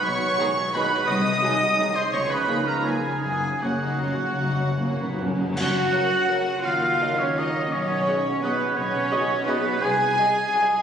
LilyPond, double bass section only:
\new Staff \with { instrumentName = "Double bass section" } { \clef bass \time 3/4 \key fis \major \tempo 4 = 168 b,,4 r2 | bis,,4 r2 | cis,4 r2 | fis,,4 r2 |
fis,,4 r2 | fis,4 r2 | dis,4 r2 | b,,4 r2 |
b,,4 r2 | bis,,4 r2 | }